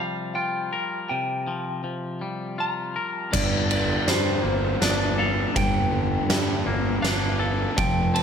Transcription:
0.00 0.73 C3 soft
0.00 1.46 F3 soft
0.00 1.85 G3 soft
0.00 0.35 F5 soft
0.35 2.22 F4 soft
0.35 1.08 G5 soft
0.73 2.59 A#4 soft
1.09 2.97 C3 soft
1.09 1.81 G5 soft
1.48 1.83 F3 soft
1.84 3.33 F3 soft
2.21 3.33 G3 soft
2.58 3.33 F4 soft
2.58 3.13 A#5 medium
2.96 3.33 A#4 soft
3.13 3.36 A5 medium
3.32 3.97 G1 medium
3.32 5.18 G2 medium
3.32 7.74 G3 medium
3.32 7.74 A#3 medium
3.32 7.74 D4 medium
3.32 8.23 A4 medium
3.32 3.71 D5 medium
3.32 kick medium
3.32 crash medium
3.69 5.56 D3 soft
3.69 4.08 D5 medium
3.69 ride soft
4.07 4.39 G2 medium
4.07 5.93 G3 soft
4.07 4.82 C5 medium
4.07 snare medium
4.07 ride soft
4.42 4.76 G1 medium
4.42 6.29 A#3 soft
4.81 5.45 G1 medium
4.81 6.67 D4 medium
4.81 5.21 D5 medium
4.81 snare medium
4.81 ride soft
5.18 7.39 A4 medium
5.18 5.56 F5 medium
5.55 6.19 G1 medium
5.55 7.41 G2 medium
5.55 7.01 G5 medium
5.55 kick medium
5.55 ride soft
5.91 7.77 D3 soft
6.29 6.61 G2 medium
6.29 7.77 G3 soft
6.29 snare medium
6.29 ride soft
6.66 6.98 G1 medium
6.66 7.78 A#3 medium
7.02 7.67 G1 medium
7.02 7.77 D4 medium
7.02 7.77 F5 medium
7.02 snare medium
7.02 ride soft
7.40 8.23 A4 medium
7.77 8.23 F1 medium
7.77 8.23 F3 medium
7.77 8.16 G5 medium
7.77 kick medium
7.77 ride soft
8.14 8.23 C4 medium
8.14 8.23 A5 medium
8.14 ride soft

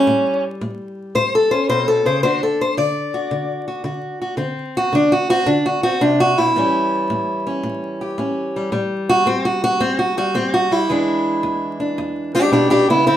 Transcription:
0.00 1.52 G3 soft
0.00 0.43 C#4 loud
0.07 0.57 A2 medium
0.61 1.12 A2 medium
1.15 1.65 A2 medium
1.15 1.33 C5 loud
1.35 1.52 A4 medium
1.51 2.22 C#4 soft
1.51 1.68 C5 medium
1.69 2.05 B2 medium
1.69 1.87 C5 loud
1.88 2.05 A4 medium
2.05 2.23 C#3 medium
2.05 2.22 C5 medium
2.23 2.74 D3 medium
2.23 4.38 D4 medium
2.23 2.43 F#4 medium
2.23 2.41 C5 loud
2.43 2.60 A4 medium
2.61 2.78 C5 medium
2.77 3.28 D3 medium
2.77 4.40 D5 loud
3.14 3.66 F#4 soft
3.31 3.82 D3 medium
3.68 3.84 F#4 soft
3.84 4.35 D3 medium
3.84 4.20 F#4 soft
4.21 4.37 F#4 soft
4.37 4.89 D3 medium
4.37 4.93 C4 medium
4.77 4.94 F#4 loud
4.93 5.44 D3 medium
4.93 5.12 D4 loud
5.12 5.29 F#4 medium
5.30 5.46 C4 medium
5.30 5.48 F#4 loud
5.46 5.98 D3 medium
5.46 5.65 D4 medium
5.66 5.82 F#4 medium
5.83 6.01 C4 soft
5.83 6.02 F#4 loud
6.01 6.38 C3 medium
6.01 6.20 D4 loud
6.20 6.38 F#4 loud
6.38 6.55 B2 medium
6.38 7.46 E4 loud
6.56 7.06 A2 medium
6.56 9.12 E3 medium
6.56 8.55 G3 medium
6.56 7.46 C#4 soft
7.10 7.60 A2 medium
7.47 8.18 C#4 medium
7.63 8.14 A2 medium
8.01 8.71 G4 soft
8.18 8.69 A2 medium
8.18 8.70 C#4 soft
8.56 8.71 G3 soft
8.72 9.23 A2 medium
8.72 10.16 G3 medium
9.09 9.27 F#4 loud
9.26 9.77 A2 medium
9.26 9.45 C4 loud
9.45 9.63 F#4 medium
9.64 9.81 F#4 loud
9.80 10.31 A2 medium
9.80 9.98 C4 loud
9.99 10.16 F#4 medium
10.17 10.70 G3 soft
10.17 10.35 F#4 medium
10.34 10.85 A2 medium
10.34 10.53 C4 loud
10.54 10.72 F#4 loud
10.71 10.89 G3 soft
10.71 11.80 E4 loud
10.89 11.40 E2 medium
10.89 13.04 E3 medium
10.89 12.34 G#3 medium
10.89 11.80 D4 medium
11.43 11.93 E2 medium
11.80 12.33 D4 medium
11.98 12.48 E2 medium
12.34 13.04 G#3 soft
12.34 12.51 D4 medium
12.34 12.52 G4 loud
12.52 12.87 B2 medium
12.52 12.69 D4 medium
12.52 12.70 G4 medium
12.70 12.88 D4 medium
12.70 12.88 G4 loud
12.89 13.06 C#3 medium
12.89 13.06 B3 medium
12.89 13.06 E4 medium
13.06 13.17 D3 medium
13.06 13.17 C4 medium
13.06 13.17 E4 loud

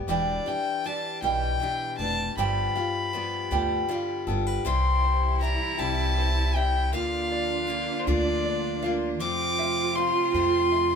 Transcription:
0.00 0.11 D4 medium
0.00 0.85 G4 medium
0.00 2.00 B4 medium
0.08 0.38 E1 medium
0.08 0.46 E2 medium
0.08 0.47 B2 medium
0.08 0.47 E3 medium
0.08 0.47 G3 medium
0.08 0.46 D4 medium
0.08 1.22 G4 medium
0.08 0.45 G4 medium
0.08 0.49 D5 medium
0.46 0.83 E3 soft
0.46 0.84 G3 soft
0.46 0.85 D4 soft
0.46 1.61 E4 medium
0.46 0.85 G4 soft
0.46 0.87 G5 medium
0.84 1.23 E3 medium
0.84 1.22 G3 medium
0.84 1.99 D4 medium
0.84 1.21 D4 medium
0.84 1.21 G4 medium
0.84 1.22 A5 medium
1.22 1.52 B1 loud
1.22 1.62 E2 soft
1.22 1.62 B2 soft
1.22 1.59 E3 medium
1.22 1.60 G3 soft
1.22 1.61 D4 medium
1.22 1.61 G4 medium
1.22 2.37 G4 medium
1.22 1.95 G5 medium
1.60 1.99 E3 medium
1.60 1.99 G3 medium
1.60 1.99 D4 medium
1.60 2.38 E4 medium
1.60 1.98 G4 medium
1.98 2.29 F1 medium
1.98 2.38 G3 soft
1.98 2.38 D4 medium
1.98 2.38 D4 soft
1.98 2.37 G4 medium
1.98 2.33 B4 medium
1.98 2.34 A5 medium
2.02 2.38 E3 soft
2.37 2.67 G1 medium
2.37 2.76 G2 medium
2.37 2.76 D3 medium
2.37 2.76 F3 medium
2.37 2.76 G3 medium
2.37 2.76 B3 medium
2.37 3.51 G4 medium
2.37 2.74 G4 medium
2.37 4.24 B5 medium
2.75 3.12 F3 soft
2.75 3.13 G3 soft
2.75 3.14 B3 soft
2.75 3.88 F4 medium
2.75 4.62 F4 medium
2.75 3.14 G4 soft
3.13 3.51 F3 medium
3.13 3.51 G3 medium
3.13 4.27 B3 medium
3.13 3.50 B3 medium
3.13 3.50 G4 medium
3.51 3.81 D2 loud
3.51 3.90 G2 medium
3.51 3.90 D3 medium
3.51 3.87 F3 medium
3.51 3.88 G3 medium
3.51 3.89 B3 medium
3.51 3.89 G4 medium
3.51 4.66 G4 medium
3.88 4.27 F3 medium
3.88 4.27 G3 medium
3.88 4.27 B3 medium
3.88 4.66 F4 medium
3.88 4.26 G4 medium
4.27 4.57 G1 medium
4.27 4.65 F3 soft
4.27 4.64 G3 soft
4.27 4.66 B3 medium
4.27 4.65 G4 medium
4.27 4.47 A4 medium
4.47 4.66 B4 medium
4.65 5.54 C2 medium
4.65 5.41 C3 medium
4.65 6.91 C3 medium
4.65 6.91 E3 medium
4.65 5.40 E3 medium
4.65 6.91 G3 medium
4.65 5.41 G3 medium
4.65 5.42 C4 medium
4.65 6.91 E4 medium
4.65 6.95 E4 loud
4.65 5.42 E4 medium
4.65 5.42 G4 medium
4.65 5.38 C6 medium
5.04 6.17 C5 medium
5.41 5.79 E3 medium
5.41 5.78 G3 medium
5.41 5.78 C4 medium
5.41 5.77 G4 medium
5.41 6.55 E5 medium
5.41 5.81 A#5 medium
5.78 6.93 C2 medium
5.78 6.56 C3 medium
5.78 6.56 E3 medium
5.78 6.55 G3 medium
5.78 6.54 C4 medium
5.78 6.94 E4 medium
5.78 6.52 G4 medium
5.78 6.57 A5 medium
6.18 6.94 C5 medium
6.54 6.93 G3 soft
6.54 6.93 C4 soft
6.54 6.92 G4 soft
6.54 6.94 E5 medium
6.54 6.93 G5 medium
6.92 7.82 D2 medium
6.92 9.18 D3 medium
6.92 7.66 D3 medium
6.92 10.95 F3 medium
6.92 9.18 A#3 medium
6.92 7.67 A#3 medium
6.92 9.22 D4 loud
6.92 7.68 D4 medium
6.92 9.18 F4 medium
6.92 8.07 F4 medium
6.92 7.70 F4 medium
6.92 8.01 F5 medium
7.32 8.44 D5 medium
7.67 8.06 D3 medium
7.67 8.07 A#3 medium
7.67 8.07 D4 medium
7.67 8.06 F4 medium
7.99 8.08 C5 medium
8.06 9.20 D2 medium
8.06 8.84 D3 medium
8.06 8.84 A#3 medium
8.06 8.83 D4 medium
8.06 8.82 F4 medium
8.06 9.21 F4 medium
8.06 8.92 D5 loud
8.46 9.21 D5 medium
8.82 9.21 A#3 soft
8.82 9.21 D4 medium
8.82 9.21 F4 medium
8.82 9.21 F5 medium
9.20 10.09 F2 medium
9.20 10.95 C3 medium
9.20 9.95 F3 medium
9.20 10.95 A3 medium
9.20 9.96 A3 medium
9.20 10.95 C4 medium
9.20 9.97 C4 medium
9.20 10.95 F4 loud
9.20 9.97 D6 loud
9.59 10.71 E5 medium
9.95 10.34 F3 medium
9.95 10.34 A3 medium
9.95 10.33 C4 medium
9.95 10.95 F5 medium
9.95 10.32 C6 loud
10.33 10.95 F2 loud
10.33 10.95 F3 medium
10.33 10.95 A3 medium
10.33 10.95 C4 medium
10.33 10.95 C6 loud
10.72 10.95 E5 medium

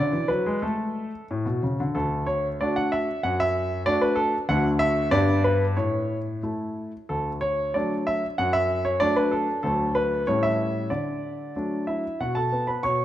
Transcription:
0.00 0.11 D3 medium
0.00 0.29 D5 medium
0.12 0.28 E3 medium
0.28 0.45 F#3 medium
0.28 0.59 B4 medium
0.46 0.62 G#3 medium
0.62 1.10 A3 medium
0.62 1.24 A4 medium
1.31 1.45 A2 medium
1.45 1.61 B2 medium
1.63 1.78 C#3 soft
1.80 1.95 D3 medium
1.95 2.58 D2 medium
1.95 2.24 A4 medium
2.27 2.46 C#5 medium
2.61 3.06 A3 soft
2.61 3.06 D4 soft
2.61 3.07 F#4 soft
2.61 2.76 D5 medium
2.76 2.92 F#5 medium
2.92 3.20 E5 medium
3.23 3.84 F#2 medium
3.23 3.39 F#5 medium
3.40 3.82 E5 medium
3.86 4.31 A3 soft
3.86 4.32 D4 medium
3.86 4.32 F#4 medium
3.86 4.01 D5 medium
4.01 4.17 B4 medium
4.15 4.35 A4 medium
4.49 5.10 D2 medium
4.49 5.09 A3 soft
4.49 5.09 D4 soft
4.49 5.09 F#4 soft
4.49 4.68 F#5 medium
4.79 5.08 E5 loud
5.11 5.75 G2 medium
5.11 5.73 B3 soft
5.11 5.73 D4 soft
5.11 5.74 G4 soft
5.11 5.41 D5 loud
5.44 5.64 B4 medium
5.77 6.41 A2 medium
5.77 6.16 C#5 medium
6.43 6.91 A3 soft
6.43 6.91 E4 soft
7.09 7.72 D2 soft
7.09 7.29 A4 medium
7.41 7.74 C#5 medium
7.74 8.21 F#3 soft
7.74 8.20 A3 soft
7.74 8.21 D4 soft
7.74 7.93 D5 medium
8.07 8.26 E5 medium
8.38 9.00 F#2 medium
8.38 8.54 F#5 medium
8.53 8.85 E5 medium
8.85 9.01 C#5 medium
9.00 9.46 F#3 soft
9.00 9.46 A3 soft
9.00 9.46 D4 medium
9.00 9.16 D5 medium
9.16 9.32 B4 medium
9.31 9.61 A4 medium
9.63 10.24 D2 medium
9.63 10.22 F#3 soft
9.63 10.22 A3 soft
9.63 10.23 D4 soft
9.63 9.94 A4 medium
9.95 10.26 B4 medium
10.27 10.89 A2 medium
10.27 10.87 G3 soft
10.27 10.87 A3 soft
10.27 10.88 C#4 soft
10.27 10.42 C#5 medium
10.43 10.91 E5 medium
10.90 11.54 D3 soft
10.90 11.84 D5 medium
11.56 12.03 F#3 soft
11.56 12.03 A3 soft
11.56 12.03 D4 soft
11.87 12.18 E4 soft
11.87 12.20 E5 medium
12.20 12.51 B2 medium
12.20 12.36 F#4 soft
12.20 12.37 F#5 medium
12.35 12.66 A4 medium
12.35 12.68 A5 medium
12.52 12.83 B3 soft
12.67 12.83 B4 soft
12.67 12.84 B5 medium
12.83 13.05 B2 soft
12.83 13.05 C#5 medium
12.83 13.03 C#6 medium

